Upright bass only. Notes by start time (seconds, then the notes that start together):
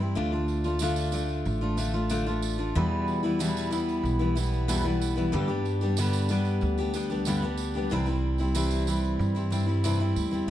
Already playing: G2
0.17 D2
1.46 A1
2.76 E2
4.03 B1
5.33 G2
6.62 D2
7.92 C2
9.19 G2
10.16 D2
10.32 E2